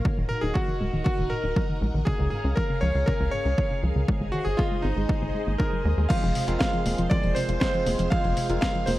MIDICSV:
0, 0, Header, 1, 7, 480
1, 0, Start_track
1, 0, Tempo, 504202
1, 48, Time_signature, 4, 2, 24, 8
1, 8557, End_track
2, 0, Start_track
2, 0, Title_t, "Electric grand piano"
2, 0, Program_c, 0, 2
2, 274, Note_on_c, 0, 70, 96
2, 392, Note_off_c, 0, 70, 0
2, 394, Note_on_c, 0, 68, 91
2, 512, Note_off_c, 0, 68, 0
2, 514, Note_on_c, 0, 66, 92
2, 979, Note_off_c, 0, 66, 0
2, 993, Note_on_c, 0, 66, 88
2, 1235, Note_on_c, 0, 70, 91
2, 1248, Note_off_c, 0, 66, 0
2, 1687, Note_off_c, 0, 70, 0
2, 1953, Note_on_c, 0, 68, 88
2, 2179, Note_off_c, 0, 68, 0
2, 2193, Note_on_c, 0, 68, 80
2, 2423, Note_off_c, 0, 68, 0
2, 2434, Note_on_c, 0, 70, 96
2, 2663, Note_off_c, 0, 70, 0
2, 2674, Note_on_c, 0, 73, 101
2, 2913, Note_on_c, 0, 70, 94
2, 2928, Note_off_c, 0, 73, 0
2, 3143, Note_off_c, 0, 70, 0
2, 3154, Note_on_c, 0, 73, 105
2, 3607, Note_off_c, 0, 73, 0
2, 4112, Note_on_c, 0, 66, 94
2, 4231, Note_off_c, 0, 66, 0
2, 4233, Note_on_c, 0, 68, 99
2, 4352, Note_on_c, 0, 65, 94
2, 4364, Note_off_c, 0, 68, 0
2, 4592, Note_on_c, 0, 63, 83
2, 4607, Note_off_c, 0, 65, 0
2, 5316, Note_on_c, 0, 70, 83
2, 5522, Note_off_c, 0, 63, 0
2, 5795, Note_on_c, 0, 77, 94
2, 5816, Note_off_c, 0, 70, 0
2, 6261, Note_off_c, 0, 77, 0
2, 6275, Note_on_c, 0, 77, 96
2, 6727, Note_off_c, 0, 77, 0
2, 6755, Note_on_c, 0, 74, 91
2, 6994, Note_on_c, 0, 72, 90
2, 7009, Note_off_c, 0, 74, 0
2, 7221, Note_off_c, 0, 72, 0
2, 7235, Note_on_c, 0, 72, 92
2, 7715, Note_on_c, 0, 77, 99
2, 7736, Note_off_c, 0, 72, 0
2, 8182, Note_off_c, 0, 77, 0
2, 8196, Note_on_c, 0, 77, 100
2, 8435, Note_on_c, 0, 72, 91
2, 8449, Note_off_c, 0, 77, 0
2, 8490, Note_off_c, 0, 72, 0
2, 8557, End_track
3, 0, Start_track
3, 0, Title_t, "String machine"
3, 0, Program_c, 1, 50
3, 46, Note_on_c, 1, 63, 77
3, 47, Note_on_c, 1, 66, 73
3, 47, Note_on_c, 1, 70, 87
3, 1948, Note_off_c, 1, 63, 0
3, 1948, Note_off_c, 1, 66, 0
3, 1968, Note_on_c, 1, 61, 78
3, 1969, Note_on_c, 1, 68, 74
3, 1969, Note_on_c, 1, 77, 90
3, 3849, Note_off_c, 1, 70, 0
3, 3869, Note_off_c, 1, 61, 0
3, 3869, Note_off_c, 1, 77, 0
3, 3886, Note_on_c, 1, 72, 75
3, 3886, Note_on_c, 1, 75, 90
3, 3887, Note_on_c, 1, 56, 82
3, 5770, Note_off_c, 1, 68, 0
3, 5788, Note_off_c, 1, 56, 0
3, 5788, Note_off_c, 1, 72, 0
3, 5788, Note_off_c, 1, 75, 0
3, 5807, Note_on_c, 1, 68, 76
3, 5808, Note_on_c, 1, 65, 83
3, 5808, Note_on_c, 1, 72, 91
3, 8557, Note_off_c, 1, 65, 0
3, 8557, Note_off_c, 1, 68, 0
3, 8557, Note_off_c, 1, 72, 0
3, 8557, End_track
4, 0, Start_track
4, 0, Title_t, "Tine electric piano"
4, 0, Program_c, 2, 4
4, 5807, Note_on_c, 2, 56, 87
4, 5807, Note_on_c, 2, 60, 77
4, 5807, Note_on_c, 2, 72, 95
4, 5808, Note_on_c, 2, 65, 75
4, 6139, Note_off_c, 2, 56, 0
4, 6139, Note_off_c, 2, 60, 0
4, 6139, Note_off_c, 2, 65, 0
4, 6139, Note_off_c, 2, 72, 0
4, 6168, Note_on_c, 2, 56, 92
4, 6168, Note_on_c, 2, 60, 85
4, 6168, Note_on_c, 2, 65, 84
4, 6168, Note_on_c, 2, 70, 99
4, 7219, Note_off_c, 2, 56, 0
4, 7219, Note_off_c, 2, 60, 0
4, 7219, Note_off_c, 2, 65, 0
4, 7219, Note_off_c, 2, 70, 0
4, 7247, Note_on_c, 2, 56, 98
4, 7247, Note_on_c, 2, 60, 92
4, 7247, Note_on_c, 2, 72, 114
4, 7248, Note_on_c, 2, 65, 92
4, 7699, Note_off_c, 2, 56, 0
4, 7699, Note_off_c, 2, 60, 0
4, 7699, Note_off_c, 2, 65, 0
4, 7699, Note_off_c, 2, 72, 0
4, 7728, Note_on_c, 2, 56, 86
4, 7728, Note_on_c, 2, 60, 80
4, 7728, Note_on_c, 2, 65, 79
4, 7728, Note_on_c, 2, 72, 93
4, 8059, Note_off_c, 2, 56, 0
4, 8059, Note_off_c, 2, 60, 0
4, 8059, Note_off_c, 2, 65, 0
4, 8059, Note_off_c, 2, 72, 0
4, 8088, Note_on_c, 2, 56, 90
4, 8088, Note_on_c, 2, 60, 85
4, 8088, Note_on_c, 2, 65, 83
4, 8088, Note_on_c, 2, 70, 99
4, 8557, Note_off_c, 2, 56, 0
4, 8557, Note_off_c, 2, 60, 0
4, 8557, Note_off_c, 2, 65, 0
4, 8557, Note_off_c, 2, 70, 0
4, 8557, End_track
5, 0, Start_track
5, 0, Title_t, "Synth arpeggio sound"
5, 0, Program_c, 3, 84
5, 48, Note_on_c, 3, 51, 80
5, 153, Note_off_c, 3, 51, 0
5, 168, Note_on_c, 3, 51, 76
5, 273, Note_off_c, 3, 51, 0
5, 287, Note_on_c, 3, 46, 81
5, 393, Note_off_c, 3, 46, 0
5, 408, Note_on_c, 3, 63, 98
5, 522, Note_off_c, 3, 63, 0
5, 528, Note_on_c, 3, 54, 80
5, 642, Note_off_c, 3, 54, 0
5, 647, Note_on_c, 3, 51, 71
5, 762, Note_off_c, 3, 51, 0
5, 767, Note_on_c, 3, 56, 99
5, 872, Note_off_c, 3, 56, 0
5, 887, Note_on_c, 3, 51, 96
5, 995, Note_off_c, 3, 51, 0
5, 1006, Note_on_c, 3, 51, 82
5, 1112, Note_off_c, 3, 51, 0
5, 1126, Note_on_c, 3, 51, 80
5, 1232, Note_off_c, 3, 51, 0
5, 1246, Note_on_c, 3, 46, 74
5, 1352, Note_off_c, 3, 46, 0
5, 1366, Note_on_c, 3, 63, 102
5, 1481, Note_off_c, 3, 63, 0
5, 1486, Note_on_c, 3, 54, 82
5, 1601, Note_off_c, 3, 54, 0
5, 1607, Note_on_c, 3, 51, 75
5, 1721, Note_off_c, 3, 51, 0
5, 1727, Note_on_c, 3, 56, 96
5, 1833, Note_off_c, 3, 56, 0
5, 1847, Note_on_c, 3, 51, 101
5, 1961, Note_off_c, 3, 51, 0
5, 1966, Note_on_c, 3, 49, 79
5, 2072, Note_off_c, 3, 49, 0
5, 2087, Note_on_c, 3, 49, 75
5, 2193, Note_off_c, 3, 49, 0
5, 2207, Note_on_c, 3, 44, 81
5, 2313, Note_off_c, 3, 44, 0
5, 2327, Note_on_c, 3, 61, 101
5, 2441, Note_off_c, 3, 61, 0
5, 2448, Note_on_c, 3, 53, 75
5, 2562, Note_off_c, 3, 53, 0
5, 2567, Note_on_c, 3, 49, 76
5, 2681, Note_off_c, 3, 49, 0
5, 2687, Note_on_c, 3, 53, 99
5, 2792, Note_off_c, 3, 53, 0
5, 2808, Note_on_c, 3, 49, 97
5, 2916, Note_off_c, 3, 49, 0
5, 2928, Note_on_c, 3, 49, 81
5, 3033, Note_off_c, 3, 49, 0
5, 3048, Note_on_c, 3, 49, 81
5, 3153, Note_off_c, 3, 49, 0
5, 3167, Note_on_c, 3, 44, 73
5, 3273, Note_off_c, 3, 44, 0
5, 3288, Note_on_c, 3, 61, 101
5, 3402, Note_off_c, 3, 61, 0
5, 3407, Note_on_c, 3, 53, 80
5, 3522, Note_off_c, 3, 53, 0
5, 3528, Note_on_c, 3, 49, 74
5, 3642, Note_off_c, 3, 49, 0
5, 3647, Note_on_c, 3, 53, 91
5, 3753, Note_off_c, 3, 53, 0
5, 3767, Note_on_c, 3, 49, 96
5, 3882, Note_off_c, 3, 49, 0
5, 3887, Note_on_c, 3, 56, 82
5, 3993, Note_off_c, 3, 56, 0
5, 4008, Note_on_c, 3, 56, 76
5, 4113, Note_off_c, 3, 56, 0
5, 4127, Note_on_c, 3, 51, 77
5, 4232, Note_off_c, 3, 51, 0
5, 4248, Note_on_c, 3, 68, 99
5, 4362, Note_off_c, 3, 68, 0
5, 4367, Note_on_c, 3, 60, 79
5, 4482, Note_off_c, 3, 60, 0
5, 4488, Note_on_c, 3, 56, 72
5, 4602, Note_off_c, 3, 56, 0
5, 4608, Note_on_c, 3, 60, 97
5, 4713, Note_off_c, 3, 60, 0
5, 4727, Note_on_c, 3, 56, 96
5, 4836, Note_off_c, 3, 56, 0
5, 4847, Note_on_c, 3, 56, 79
5, 4953, Note_off_c, 3, 56, 0
5, 4968, Note_on_c, 3, 56, 77
5, 5073, Note_off_c, 3, 56, 0
5, 5087, Note_on_c, 3, 56, 72
5, 5193, Note_off_c, 3, 56, 0
5, 5208, Note_on_c, 3, 58, 79
5, 5322, Note_off_c, 3, 58, 0
5, 5328, Note_on_c, 3, 63, 79
5, 5433, Note_off_c, 3, 63, 0
5, 5448, Note_on_c, 3, 54, 75
5, 5553, Note_off_c, 3, 54, 0
5, 5569, Note_on_c, 3, 56, 74
5, 5674, Note_off_c, 3, 56, 0
5, 5689, Note_on_c, 3, 56, 72
5, 5794, Note_off_c, 3, 56, 0
5, 5809, Note_on_c, 3, 53, 88
5, 5914, Note_off_c, 3, 53, 0
5, 5928, Note_on_c, 3, 53, 82
5, 6033, Note_off_c, 3, 53, 0
5, 6048, Note_on_c, 3, 48, 78
5, 6153, Note_off_c, 3, 48, 0
5, 6168, Note_on_c, 3, 65, 101
5, 6282, Note_off_c, 3, 65, 0
5, 6288, Note_on_c, 3, 56, 81
5, 6402, Note_off_c, 3, 56, 0
5, 6408, Note_on_c, 3, 53, 78
5, 6522, Note_off_c, 3, 53, 0
5, 6526, Note_on_c, 3, 58, 101
5, 6632, Note_off_c, 3, 58, 0
5, 6647, Note_on_c, 3, 53, 106
5, 6755, Note_off_c, 3, 53, 0
5, 6767, Note_on_c, 3, 53, 89
5, 6872, Note_off_c, 3, 53, 0
5, 6887, Note_on_c, 3, 53, 81
5, 6993, Note_off_c, 3, 53, 0
5, 7007, Note_on_c, 3, 48, 74
5, 7113, Note_off_c, 3, 48, 0
5, 7128, Note_on_c, 3, 65, 109
5, 7242, Note_off_c, 3, 65, 0
5, 7247, Note_on_c, 3, 56, 85
5, 7362, Note_off_c, 3, 56, 0
5, 7368, Note_on_c, 3, 53, 79
5, 7482, Note_off_c, 3, 53, 0
5, 7487, Note_on_c, 3, 58, 99
5, 7593, Note_off_c, 3, 58, 0
5, 7606, Note_on_c, 3, 53, 102
5, 7715, Note_off_c, 3, 53, 0
5, 7727, Note_on_c, 3, 53, 84
5, 7832, Note_off_c, 3, 53, 0
5, 7847, Note_on_c, 3, 53, 78
5, 7953, Note_off_c, 3, 53, 0
5, 7968, Note_on_c, 3, 48, 82
5, 8073, Note_off_c, 3, 48, 0
5, 8087, Note_on_c, 3, 65, 103
5, 8202, Note_off_c, 3, 65, 0
5, 8208, Note_on_c, 3, 56, 79
5, 8322, Note_off_c, 3, 56, 0
5, 8327, Note_on_c, 3, 53, 75
5, 8442, Note_off_c, 3, 53, 0
5, 8447, Note_on_c, 3, 58, 110
5, 8553, Note_off_c, 3, 58, 0
5, 8557, End_track
6, 0, Start_track
6, 0, Title_t, "Analog synth bass"
6, 0, Program_c, 4, 38
6, 167, Note_on_c, 4, 27, 73
6, 260, Note_off_c, 4, 27, 0
6, 408, Note_on_c, 4, 27, 76
6, 500, Note_off_c, 4, 27, 0
6, 768, Note_on_c, 4, 27, 87
6, 860, Note_off_c, 4, 27, 0
6, 888, Note_on_c, 4, 27, 79
6, 980, Note_off_c, 4, 27, 0
6, 1128, Note_on_c, 4, 27, 74
6, 1220, Note_off_c, 4, 27, 0
6, 1367, Note_on_c, 4, 27, 81
6, 1460, Note_off_c, 4, 27, 0
6, 1727, Note_on_c, 4, 34, 92
6, 1819, Note_off_c, 4, 34, 0
6, 1848, Note_on_c, 4, 34, 80
6, 1940, Note_off_c, 4, 34, 0
6, 2088, Note_on_c, 4, 37, 74
6, 2180, Note_off_c, 4, 37, 0
6, 2327, Note_on_c, 4, 37, 76
6, 2419, Note_off_c, 4, 37, 0
6, 2687, Note_on_c, 4, 37, 91
6, 2779, Note_off_c, 4, 37, 0
6, 2807, Note_on_c, 4, 37, 80
6, 2899, Note_off_c, 4, 37, 0
6, 3046, Note_on_c, 4, 37, 74
6, 3139, Note_off_c, 4, 37, 0
6, 3286, Note_on_c, 4, 37, 78
6, 3379, Note_off_c, 4, 37, 0
6, 3646, Note_on_c, 4, 37, 95
6, 3739, Note_off_c, 4, 37, 0
6, 3766, Note_on_c, 4, 37, 82
6, 3859, Note_off_c, 4, 37, 0
6, 4005, Note_on_c, 4, 32, 76
6, 4099, Note_off_c, 4, 32, 0
6, 4246, Note_on_c, 4, 32, 78
6, 4339, Note_off_c, 4, 32, 0
6, 4607, Note_on_c, 4, 32, 85
6, 4699, Note_off_c, 4, 32, 0
6, 4727, Note_on_c, 4, 32, 81
6, 4819, Note_off_c, 4, 32, 0
6, 4968, Note_on_c, 4, 32, 79
6, 5060, Note_off_c, 4, 32, 0
6, 5208, Note_on_c, 4, 32, 80
6, 5300, Note_off_c, 4, 32, 0
6, 5569, Note_on_c, 4, 39, 95
6, 5660, Note_off_c, 4, 39, 0
6, 5689, Note_on_c, 4, 39, 82
6, 5780, Note_off_c, 4, 39, 0
6, 5929, Note_on_c, 4, 29, 75
6, 6020, Note_off_c, 4, 29, 0
6, 6169, Note_on_c, 4, 29, 80
6, 6261, Note_off_c, 4, 29, 0
6, 6528, Note_on_c, 4, 29, 90
6, 6620, Note_off_c, 4, 29, 0
6, 6648, Note_on_c, 4, 29, 81
6, 6740, Note_off_c, 4, 29, 0
6, 6888, Note_on_c, 4, 29, 80
6, 6980, Note_off_c, 4, 29, 0
6, 7128, Note_on_c, 4, 29, 85
6, 7220, Note_off_c, 4, 29, 0
6, 7488, Note_on_c, 4, 29, 97
6, 7580, Note_off_c, 4, 29, 0
6, 7607, Note_on_c, 4, 29, 84
6, 7699, Note_off_c, 4, 29, 0
6, 7847, Note_on_c, 4, 29, 80
6, 7940, Note_off_c, 4, 29, 0
6, 8087, Note_on_c, 4, 29, 83
6, 8179, Note_off_c, 4, 29, 0
6, 8448, Note_on_c, 4, 29, 94
6, 8540, Note_off_c, 4, 29, 0
6, 8557, End_track
7, 0, Start_track
7, 0, Title_t, "Drums"
7, 48, Note_on_c, 9, 36, 109
7, 143, Note_off_c, 9, 36, 0
7, 528, Note_on_c, 9, 36, 98
7, 623, Note_off_c, 9, 36, 0
7, 1008, Note_on_c, 9, 36, 106
7, 1103, Note_off_c, 9, 36, 0
7, 1488, Note_on_c, 9, 36, 96
7, 1583, Note_off_c, 9, 36, 0
7, 1968, Note_on_c, 9, 36, 104
7, 2064, Note_off_c, 9, 36, 0
7, 2448, Note_on_c, 9, 36, 96
7, 2544, Note_off_c, 9, 36, 0
7, 2928, Note_on_c, 9, 36, 105
7, 3023, Note_off_c, 9, 36, 0
7, 3408, Note_on_c, 9, 36, 96
7, 3503, Note_off_c, 9, 36, 0
7, 3888, Note_on_c, 9, 36, 102
7, 3983, Note_off_c, 9, 36, 0
7, 4368, Note_on_c, 9, 36, 100
7, 4463, Note_off_c, 9, 36, 0
7, 4848, Note_on_c, 9, 36, 107
7, 4943, Note_off_c, 9, 36, 0
7, 5328, Note_on_c, 9, 36, 96
7, 5423, Note_off_c, 9, 36, 0
7, 5808, Note_on_c, 9, 36, 122
7, 5808, Note_on_c, 9, 42, 57
7, 5808, Note_on_c, 9, 49, 105
7, 5903, Note_off_c, 9, 42, 0
7, 5903, Note_off_c, 9, 49, 0
7, 5904, Note_off_c, 9, 36, 0
7, 5928, Note_on_c, 9, 42, 27
7, 6023, Note_off_c, 9, 42, 0
7, 6048, Note_on_c, 9, 46, 120
7, 6143, Note_off_c, 9, 46, 0
7, 6168, Note_on_c, 9, 42, 56
7, 6263, Note_off_c, 9, 42, 0
7, 6288, Note_on_c, 9, 38, 114
7, 6288, Note_on_c, 9, 42, 56
7, 6289, Note_on_c, 9, 36, 113
7, 6383, Note_off_c, 9, 38, 0
7, 6383, Note_off_c, 9, 42, 0
7, 6384, Note_off_c, 9, 36, 0
7, 6408, Note_on_c, 9, 42, 29
7, 6503, Note_off_c, 9, 42, 0
7, 6527, Note_on_c, 9, 46, 105
7, 6622, Note_off_c, 9, 46, 0
7, 6648, Note_on_c, 9, 42, 55
7, 6743, Note_off_c, 9, 42, 0
7, 6768, Note_on_c, 9, 42, 56
7, 6769, Note_on_c, 9, 36, 114
7, 6863, Note_off_c, 9, 42, 0
7, 6864, Note_off_c, 9, 36, 0
7, 6888, Note_on_c, 9, 42, 27
7, 6983, Note_off_c, 9, 42, 0
7, 7008, Note_on_c, 9, 46, 111
7, 7103, Note_off_c, 9, 46, 0
7, 7128, Note_on_c, 9, 42, 57
7, 7223, Note_off_c, 9, 42, 0
7, 7248, Note_on_c, 9, 36, 105
7, 7248, Note_on_c, 9, 38, 115
7, 7248, Note_on_c, 9, 42, 57
7, 7343, Note_off_c, 9, 38, 0
7, 7343, Note_off_c, 9, 42, 0
7, 7344, Note_off_c, 9, 36, 0
7, 7368, Note_on_c, 9, 42, 29
7, 7463, Note_off_c, 9, 42, 0
7, 7488, Note_on_c, 9, 46, 109
7, 7583, Note_off_c, 9, 46, 0
7, 7607, Note_on_c, 9, 42, 58
7, 7703, Note_off_c, 9, 42, 0
7, 7727, Note_on_c, 9, 42, 54
7, 7728, Note_on_c, 9, 36, 124
7, 7822, Note_off_c, 9, 42, 0
7, 7823, Note_off_c, 9, 36, 0
7, 7847, Note_on_c, 9, 42, 29
7, 7943, Note_off_c, 9, 42, 0
7, 7967, Note_on_c, 9, 46, 118
7, 8062, Note_off_c, 9, 46, 0
7, 8087, Note_on_c, 9, 42, 56
7, 8182, Note_off_c, 9, 42, 0
7, 8207, Note_on_c, 9, 38, 123
7, 8207, Note_on_c, 9, 42, 57
7, 8208, Note_on_c, 9, 36, 114
7, 8302, Note_off_c, 9, 38, 0
7, 8302, Note_off_c, 9, 42, 0
7, 8303, Note_off_c, 9, 36, 0
7, 8327, Note_on_c, 9, 42, 28
7, 8422, Note_off_c, 9, 42, 0
7, 8447, Note_on_c, 9, 46, 108
7, 8542, Note_off_c, 9, 46, 0
7, 8557, End_track
0, 0, End_of_file